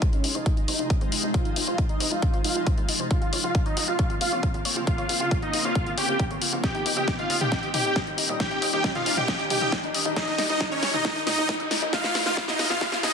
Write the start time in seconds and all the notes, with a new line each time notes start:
Already playing: C3 F3 G#3 D#4 F4, riser
0.02 C5, kick, closed hi-hat
0.13 C#4 D#4 C#5, closed hi-hat
0.24 F1 D#4, open hi-hat
0.35 F1 D#4 C5 D#5, closed hi-hat
0.46 D#4, kick, closed hi-hat
0.57 D#4, closed hi-hat
0.68 F1 D#4 C5 D#5, open hi-hat
0.79 F1 D#4, closed hi-hat
0.90 D#4, kick, closed hi-hat
1.01 F2 C5, closed hi-hat
1.12 D#4, open hi-hat
1.23 F1 D#4, closed hi-hat
1.34 F4 C5 F5, kick, closed hi-hat
1.45 D#4, closed hi-hat
1.56 F1 D#4, open hi-hat
1.67 F1 F4 C5 F5, closed hi-hat
1.78 D#4, kick, closed hi-hat
1.89 D#4 D#5, closed hi-hat
2.00 F1 C5, open hi-hat
2.11 F1 D#4 F4 F5, closed hi-hat
2.22 kick, closed hi-hat
2.34 C5, closed hi-hat
2.44 F1 D#4 F4 F5, open hi-hat
2.56 F1 D#4, closed hi-hat
2.67 C5, kick, closed hi-hat
2.78 F2 D#4, closed hi-hat
2.89 D#4, open hi-hat
3.00 F1 C5, closed hi-hat
3.11 C#3 A#3 C4 F4 F5, kick, closed hi-hat
3.22 F4, closed hi-hat
3.33 A#1 C#5, open hi-hat
3.44 A#1 F4 F5, closed hi-hat
3.55 F4, kick, closed hi-hat
3.66 D#4 C#5 D#5, closed hi-hat
3.77 A#1 F4, open hi-hat
3.88 A#1 F4 F5, closed hi-hat
3.99 C#5, kick, closed hi-hat
4.10 F4, closed hi-hat
4.21 A#1 F4 F5, open hi-hat
4.32 A#1 C#5, closed hi-hat
4.43 F4, kick, closed hi-hat
4.54 A#2 F4, closed hi-hat
4.65 C#5, open hi-hat
4.76 A#1 F4, closed hi-hat
4.87 F4 F5, kick, closed hi-hat
4.98 C#5, closed hi-hat
5.09 A#1 F4, open hi-hat
5.20 A#1 F4 F5, closed hi-hat
5.31 C#5, kick, closed hi-hat
5.42 D#4 F4 D#5, closed hi-hat
5.53 A#1 F4, open hi-hat
5.64 A#1 F4 C#5 F5, closed hi-hat
5.75 F4, kick, closed hi-hat
5.86 F4, closed hi-hat
5.97 A#1 G4 C#5 G5, open hi-hat
6.08 A#1 F4, closed hi-hat
6.20 F4, kick, closed hi-hat
6.31 F2 C#5, closed hi-hat
6.42 F4, open hi-hat
6.53 A#1 F4, closed hi-hat
6.64 A#2 D#3 G3 D#4 G4 D#5 G5, kick, snare, closed hi-hat
6.75 D#4, closed hi-hat
6.86 D#2 D#4, open hi-hat
6.97 D#2 G4 D#5 G5, closed hi-hat
7.08 kick, snare, closed hi-hat
7.19 D#4 F4 F5, closed hi-hat
7.30 D#2 D#5, open hi-hat
7.41 D#2 D#4 G4 G5, closed hi-hat, mid tom
7.52 kick, snare, closed hi-hat
7.63 D#5, closed hi-hat
7.74 D#2 D#4 G4 G5, open hi-hat, mid tom
7.85 D#2 D#4, closed hi-hat
7.96 D#5, kick, snare, closed hi-hat
8.07 D#1 D#4, closed hi-hat
8.18 D#4, open hi-hat
8.29 D#2 D#5, closed hi-hat
8.40 D#4 G4 G5, kick, snare, closed hi-hat
8.51 D#4, closed hi-hat
8.62 D#2 D#5, open hi-hat
8.73 D#2 D#4 G4 G5, closed hi-hat
8.84 D#4, kick, snare, closed hi-hat
8.95 F4 D#5 F5, closed hi-hat, mid tom
9.06 D#2 D#4, open hi-hat
9.17 D#2 D#4 G4 G5, closed hi-hat, mid tom
9.28 D#5, kick, snare, closed hi-hat
9.39 D#4, closed hi-hat
9.50 D#2 D#4 G4 G5, open hi-hat, mid tom
9.61 D#2 D#5, closed hi-hat, mid tom
9.72 D#4, kick, snare, closed hi-hat
9.83 D#1 D#4, closed hi-hat
9.94 D#5, open hi-hat
10.05 D#2 D#4, closed hi-hat
10.16 D#4 D#5, kick, snare, closed hi-hat
10.28 D#5, closed hi-hat
10.38 D#2 D#4, snare, open hi-hat
10.50 D#2 D#4 D#5, closed hi-hat
10.61 D#5, kick, snare, closed hi-hat
10.72 C#4 D#4 C#5, closed hi-hat
10.83 D#2 D#4, snare, open hi-hat
10.94 D#2 D#4 D#5, closed hi-hat, mid tom
11.05 D#4, kick, snare, closed hi-hat
11.16 D#4, closed hi-hat
11.27 D#2 D#4 D#5, snare, open hi-hat, mid tom
11.38 D#2 D#4, closed hi-hat
11.49 kick, snare, closed hi-hat
11.60 D#5, closed hi-hat
11.71 D#4, snare, open hi-hat
11.82 D#2 D#4, closed hi-hat
11.93 G#2 C#3 F3 C#4 F4 F5, kick, snare, closed hi-hat
12.04 F4, snare, closed hi-hat
12.15 C#2 F4, snare, open hi-hat
12.26 C#2 F4 F5, snare, closed hi-hat
12.37 F4, kick, snare, closed hi-hat
12.48 D#4 F4 D#5, snare, closed hi-hat, mid tom
12.59 C#2 F5, snare, open hi-hat
12.70 C#2 F4 F5, snare, closed hi-hat, mid tom
12.81 F4, kick, snare, closed hi-hat
12.92 F5, snare, closed hi-hat
13.03 C#2 D#4 D#5 G#5, snare, open hi-hat, mid tom